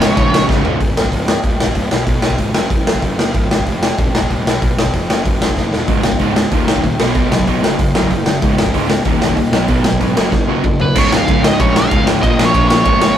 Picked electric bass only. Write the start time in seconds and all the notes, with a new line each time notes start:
Already playing: C#1
0.17 A#1
0.49 C#1
0.65 C#1
0.80 C#1
0.96 C#1
1.12 C#1
1.44 D#1
1.59 D#1
1.75 C#1
1.91 B1
2.07 B1
2.22 B1
2.38 G#1
2.54 F#1
2.70 F#1
2.86 F#1
3.03 F#1
3.19 F#1
3.34 C#1
3.50 C#1
3.67 F1
3.98 D#1
4.14 D#1
4.30 D#1
4.45 B1
4.62 B1
4.79 B1
4.93 F1
5.10 F#1
5.26 F#1
5.41 F#1
5.57 F#1
5.71 D#1
5.88 C#1
6.03 C#1
6.20 C#1
6.51 D#1
6.67 D#1
6.83 D#1
6.99 B1
7.15 B1
7.31 B1
7.47 B1
7.62 F#1
7.79 F#1
7.94 F#1
8.11 F#1
8.26 F#1
8.42 C#1
8.58 C#1
8.74 C#1
9.05 D#1
9.21 D#1
9.37 D#1
9.52 B1
9.68 B1
9.84 B1
10.01 G#1
10.16 F#1
10.32 F#1
10.47 F#1
10.64 F#1
10.80 F#1
10.96 C#1
11.11 C#1
11.28 C#1
11.59 A#1
11.91 C#1
12.07 C#1
12.23 A#1
12.39 A#1
12.54 A#1
12.85 G#1